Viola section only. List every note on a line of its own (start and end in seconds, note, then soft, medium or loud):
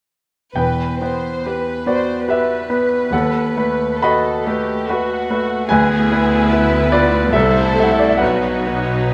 1.47 2.10 B3 soft
1.47 2.10 G4 soft
2.29 2.92 B3 soft
2.29 2.92 G4 soft
4.04 4.68 A3 soft
4.04 4.68 F#4 soft
4.89 5.51 A3 soft
4.89 5.51 F#4 medium
5.71 7.30 B3 soft
5.71 7.30 E4 soft
7.33 8.20 A3 soft
7.33 8.19 E4 medium
8.21 9.14 F#3 soft
8.21 9.14 D#4 soft